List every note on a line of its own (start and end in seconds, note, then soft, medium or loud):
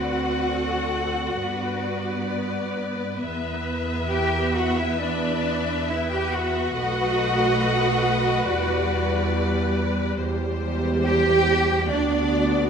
0.00 1.38 D2 medium
0.00 1.39 C4 soft
0.00 2.77 F#4 medium
0.00 0.48 B4 soft
0.00 1.38 D5 soft
0.00 2.77 F#5 medium
0.51 1.42 A4 soft
1.42 3.21 G2 medium
1.42 6.74 B3 soft
1.42 6.75 B4 soft
1.42 3.18 D5 soft
3.20 6.78 E2 medium
3.20 6.78 E5 medium
4.09 4.52 G4 medium
4.09 4.52 G5 medium
4.55 4.78 F#4 medium
4.55 4.79 F#5 medium
4.78 5.01 E4 medium
4.78 5.01 E5 medium
5.00 5.87 D4 medium
5.00 5.88 D5 medium
5.88 6.10 E4 medium
5.88 6.11 E5 medium
6.10 6.33 G4 medium
6.10 6.32 G5 medium
6.33 9.77 F#4 medium
6.33 9.78 F#5 medium
6.78 8.48 B1 medium
6.78 8.51 A3 medium
6.78 10.17 B4 medium
6.78 8.48 D#5 medium
8.50 10.20 E2 medium
8.50 10.17 G3 medium
8.50 10.17 D5 medium
10.19 11.87 E2 medium
10.19 11.87 G3 medium
10.19 11.87 G4 medium
10.19 11.87 C5 medium
11.05 11.87 G4 loud
11.05 11.88 G5 medium
11.91 12.70 D2 medium
11.91 12.70 B3 medium
11.91 12.70 D4 medium
11.91 12.70 F#4 medium
11.91 12.70 D5 medium